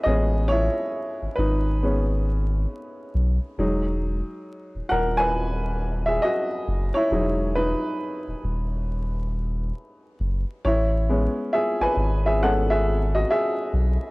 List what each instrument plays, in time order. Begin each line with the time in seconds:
Already playing: upright piano G#3 B3 C#4 F#4 G#4 A4 D#5 E5 F#5
0.04 sub bass A1, upright piano G#3 B3 C#4 G#4 D#5
0.48 upright piano E4 C#5
1.22 sub bass G#1
1.36 sub bass G#1, upright piano D#4 B4
1.82 upright piano G#3 B3 C#4
3.15 sub bass B1
3.58 sub bass E1, upright piano F#3 G#3 D#4
4.75 sub bass D#1
4.89 sub bass D#1, upright piano A#4 F#5
5.18 upright piano B4 G#5
6.06 upright piano G#4 E5
6.22 upright piano F#4 D#5
6.68 sub bass F#1
6.94 upright piano E4 C#5
7.11 sub bass E1, upright piano F#3 G#3 D#4
7.55 upright piano D#4 B4
8.28 sub bass D#1
8.44 sub bass D#1
10.20 sub bass F#1
10.65 sub bass A1, upright piano E4 C#5
11.09 upright piano G#3 B3 C#4
11.53 upright piano G#4 E5
11.81 sub bass G#1, upright piano B4 G#5
11.96 sub bass G#1
12.26 upright piano G#4 E5
12.42 upright piano G#3 B3 C#4 A4 F#5
12.70 upright piano G#4 E5
13.15 upright piano F#4 D#5
13.31 upright piano G#4 E5
13.73 sub bass B1